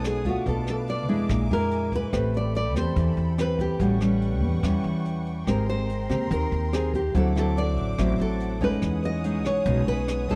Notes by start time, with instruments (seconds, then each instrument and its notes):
Already playing: upright bass B1, nylon-string guitar B2 G#3 C#4 D#4, string section C#5 F#5 G#5 D#6
0.04 nylon-string guitar G#4, cross-stick, closed hi-hat
0.25 nylon-string guitar A3 D4 F4 F#4, kick, closed hi-hat
0.46 upright bass B1, nylon-string guitar B2 A4, string section B4 F5 A5 D6, kick, closed hi-hat
0.67 nylon-string guitar A4, cross-stick, closed hi-hat
0.88 nylon-string guitar D5, closed hi-hat
1.09 upright bass F2, nylon-string guitar G#3 D4 E4, closed hi-hat
1.29 upright bass A#1, nylon-string guitar A#2, string section A#4 E5 G#5, kick, cross-stick, closed hi-hat
1.50 upright bass F2, nylon-string guitar G#3 D4 E4 A#4, closed hi-hat
1.71 closed hi-hat
1.92 nylon-string guitar B4, kick, closed hi-hat
2.12 upright bass A1, nylon-string guitar A3 C4 G4 B4, string section A4 G5 B5, kick, cross-stick, closed hi-hat
2.34 nylon-string guitar D5, closed hi-hat
2.55 nylon-string guitar D5, closed hi-hat
2.75 upright bass E2, nylon-string guitar C4 G4 C5, cross-stick, closed hi-hat
2.96 upright bass E2, nylon-string guitar E3, kick, closed hi-hat
3.17 upright bass E2, closed hi-hat
3.38 nylon-string guitar C4 G4 B4, cross-stick, closed hi-hat
3.59 nylon-string guitar G4, kick, closed hi-hat
3.79 upright bass A1, nylon-string guitar A2 G3 C#4 F#4, string section B4 F#5 C#6, kick, closed hi-hat
4.01 nylon-string guitar G3 C#4, cross-stick, closed hi-hat
4.22 closed hi-hat
4.42 upright bass E2, closed hi-hat
4.63 upright bass E2, nylon-string guitar E3 G3 C#4, kick, cross-stick, closed hi-hat
4.84 upright bass E2, closed hi-hat
5.05 closed hi-hat
5.26 closed hi-hat
5.46 upright bass G#1, nylon-string guitar G#3 C4 G4 A#4, string section A#4 A#5 C6, kick, cross-stick, closed hi-hat
5.69 nylon-string guitar C5, closed hi-hat
5.89 closed hi-hat
6.09 upright bass D#2, nylon-string guitar C4 G4 A#4, cross-stick, closed hi-hat
6.30 upright bass D#2, nylon-string guitar D#3 A#4, kick, closed hi-hat
6.52 upright bass D#2, closed hi-hat
6.73 nylon-string guitar C4 G4 G#4 A#4, cross-stick, closed hi-hat
6.94 nylon-string guitar G4, kick, closed hi-hat
7.14 upright bass D2, nylon-string guitar D3 F#3 C4 E4 A4, string section C5 E5 F#5 D6, kick, closed hi-hat
7.36 nylon-string guitar F#3 C4 E4 A4, cross-stick, closed hi-hat
7.57 nylon-string guitar D5, closed hi-hat
7.77 upright bass A1, closed hi-hat
7.98 upright bass A1, nylon-string guitar A2 F#3 C4 E4, kick, cross-stick, closed hi-hat
8.19 upright bass A1, nylon-string guitar A4, closed hi-hat
8.40 closed hi-hat
8.61 nylon-string guitar G#3 C#4 D#4 B4, kick, closed hi-hat
8.82 upright bass E2, nylon-string guitar E3, string section C#5 G#5 D#6, kick, cross-stick, closed hi-hat
9.03 nylon-string guitar D#5, closed hi-hat
9.24 nylon-string guitar G#3 C#4 D#4, closed hi-hat
9.45 upright bass B1, nylon-string guitar C#5, cross-stick, closed hi-hat
9.65 upright bass B1, nylon-string guitar B2 G#3 C#4 D#4, kick, closed hi-hat
9.87 upright bass B1, nylon-string guitar B4, closed hi-hat
10.08 cross-stick, closed hi-hat
10.29 nylon-string guitar G#3 C#4 D#4 A4, kick, closed hi-hat